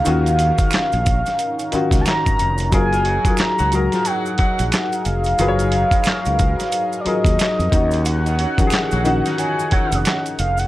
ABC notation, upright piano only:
X:1
M:4/4
L:1/16
Q:"Swing 16ths" 1/4=90
K:F#
V:1 name="Upright piano"
[D,CEF]8 z2 [D,CEF]6 | [F,EGA]3 [F,EGA]3 [F,FGA]8 z2 | [F,EGBc]8 z2 [F,EGA]4 [D,CDF]2- | [D,CDF]3 [D,E,C=G^G]3 [D,CDF]8 z2 |]